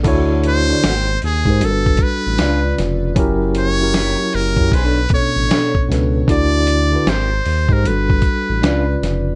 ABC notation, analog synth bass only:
X:1
M:4/4
L:1/16
Q:"Swing 16ths" 1/4=77
K:D
V:1 name="Analog synth bass" clef=bass
D,,4 ^G,,,2 ^D,, ^G,, =G,,,2 A,,, A,,, C,,2 ^E,,,2 | F,,,4- F,,, z F,,, F,, B,,,2 A,,, A,,, z2 C,,2 | D,,4 ^G,,,2 ^D,, ^G,, =G,,,2 A,,, A,,, C,,2 ^E,,,2 |]